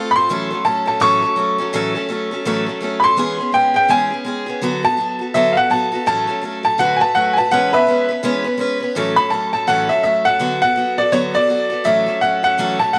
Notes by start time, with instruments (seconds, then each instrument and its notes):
Already playing: steel-string acoustic guitar A3 C4 F4 A4
0.11 upright piano B5
0.15 steel-string acoustic guitar C4 F4 A4, upright piano C6
0.29 steel-string acoustic guitar A2 E3 F#3 A3 C#4 A4
0.51 steel-string acoustic guitar F#3 A3 C#4 A4
0.64 steel-string acoustic guitar F#3 A3 C#4 A4, upright piano A5
0.86 steel-string acoustic guitar F#3 A3 C#4 A4, upright piano A5
1.00 steel-string acoustic guitar A2 E3 F#3 A3 C#4 A4, upright piano C#6
1.22 steel-string acoustic guitar F#3 A3 C#4 A4
1.36 steel-string acoustic guitar F#3 A3 C#4 A4
1.58 steel-string acoustic guitar F#3 A3 C#4 A4
1.73 steel-string acoustic guitar A2 E3 F#3 A3 C#4 A4
1.95 steel-string acoustic guitar F#3 A3 C#4 A4
2.09 steel-string acoustic guitar F#3 A3 C#4 A4
2.31 steel-string acoustic guitar F#3 A3 C#4 A4
2.45 steel-string acoustic guitar A2 E3 F#3 A3 C#4 A4
2.66 steel-string acoustic guitar F#3 A3 C#4 A4
2.81 steel-string acoustic guitar F#3 A3 C#4 A4
3.00 steel-string acoustic guitar A4, upright piano B5
3.04 steel-string acoustic guitar F#3 A3 C#4, upright piano C6
3.17 steel-string acoustic guitar E3 G#3 B3 C#4 G#4
3.39 steel-string acoustic guitar B3 C#4 G#4
3.52 steel-string acoustic guitar G#3 B3 C#4 G#4, upright piano G5
3.74 steel-string acoustic guitar B3 C#4 G#4, upright piano G5
3.88 steel-string acoustic guitar E3 G#3 B3 C#4 G#4, upright piano G#5
4.10 steel-string acoustic guitar B3 C#4 G#4
4.25 steel-string acoustic guitar G#3 B3 C#4 G#4
4.46 steel-string acoustic guitar B3 C#4 G#4
4.61 steel-string acoustic guitar D3 F#3 B3 F#4 A4
4.83 steel-string acoustic guitar B3 F#4 A4, upright piano A5
4.97 steel-string acoustic guitar F#3 B3 F#4 A4
5.19 steel-string acoustic guitar B3 F#4 A4
5.34 steel-string acoustic guitar D3 F#3 B3 F#4 A4, upright piano E5
5.53 steel-string acoustic guitar A4, upright piano F5
5.57 steel-string acoustic guitar B3 F#4, upright piano F#5
5.70 steel-string acoustic guitar F#3 B3 F#4 A4, upright piano A5
5.92 steel-string acoustic guitar B3 F#4 A4
6.06 steel-string acoustic guitar A2 E3 F#3 A3 C#4 A4, upright piano A5
6.27 steel-string acoustic guitar F#3 A3 C#4 A4
6.42 steel-string acoustic guitar F#3 A3 C#4 A4
6.63 steel-string acoustic guitar F#3 A3 C#4 A4, upright piano A5
6.78 steel-string acoustic guitar D3 F#3 A3 F#4 B4, upright piano F#5
6.96 steel-string acoustic guitar B4, upright piano G#5
7.01 steel-string acoustic guitar A3 F#4, upright piano A5
7.15 steel-string acoustic guitar F#3 A3 F#4 B4, upright piano F#5
7.33 steel-string acoustic guitar B4, upright piano G#5
7.38 steel-string acoustic guitar A3 F#4, upright piano A5
7.51 steel-string acoustic guitar E3 G#3 B3 C#4 B4, upright piano F#5
7.73 steel-string acoustic guitar B3 C#4 B4, upright piano B4 E5
7.87 steel-string acoustic guitar G#3 B3 C#4 B4
8.09 steel-string acoustic guitar B3 C#4 B4
8.23 steel-string acoustic guitar E3 G#3 B3 C#4 B4
8.44 steel-string acoustic guitar B3 C#4 B4
8.57 steel-string acoustic guitar G#3 B3 C#4 B4
8.80 steel-string acoustic guitar B3 C#4 B4
8.95 steel-string acoustic guitar A2 E3 F#3 A3 C#4 A4
9.16 steel-string acoustic guitar F#3 A3 C#4 A4, upright piano B5
9.30 steel-string acoustic guitar F#3 A3 C#4 A4, upright piano A5
9.53 steel-string acoustic guitar F#3 A3 C#4 A4, upright piano A5
9.67 steel-string acoustic guitar A2 E3 F#3 A3 C#4 A4, upright piano F#5
9.89 steel-string acoustic guitar F#3 A3 C#4 A4, upright piano E5
10.03 steel-string acoustic guitar F#3 A3 C#4 A4, upright piano E5
10.25 steel-string acoustic guitar A3 C#4 A4, upright piano F#5
10.29 steel-string acoustic guitar F#3
10.39 steel-string acoustic guitar D3 F#3 B3 F#4 A4
10.61 steel-string acoustic guitar B3 F#4 A4, upright piano F#5
10.76 steel-string acoustic guitar F#3 B3 F#4 A4
10.98 steel-string acoustic guitar B3 F#4 A4, upright piano D5
11.12 steel-string acoustic guitar D3 F#3 B3 F#4 A4, upright piano C#5
11.34 steel-string acoustic guitar B3 F#4 A4, upright piano D5
11.47 steel-string acoustic guitar F#3 B3 F#4 A4
11.70 steel-string acoustic guitar B3 F#4 A4
11.84 steel-string acoustic guitar A2 E3 F#3 A3 C#4 A4, upright piano E5
12.06 steel-string acoustic guitar F#3 A3 C#4 A4
12.21 steel-string acoustic guitar F#3 A3 C#4 A4, upright piano F#5
12.43 steel-string acoustic guitar F#3 A3 C#4 A4, upright piano F#5
12.58 steel-string acoustic guitar A2 E3 F#3 A3 C#4 A4
12.79 steel-string acoustic guitar A3 C#4 A4, upright piano A5
12.83 steel-string acoustic guitar F#3
12.93 steel-string acoustic guitar F#3 A3, upright piano F#5